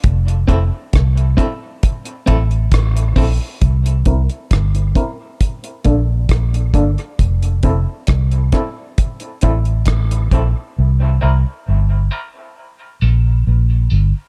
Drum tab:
HH |xxx-xxx-xxxxxxo-|xxxxxxx-xxx-xxxx|xxx-xxx-xxxxxxx-|----------------|
SD |----r-------r---|----r-------r---|----r-r-----r---|----------------|
BD |o-o-o-o-o-o-o-o-|o-o-o-o-o-o-o-o-|o-o-o-o-o-o-o-o-|----------------|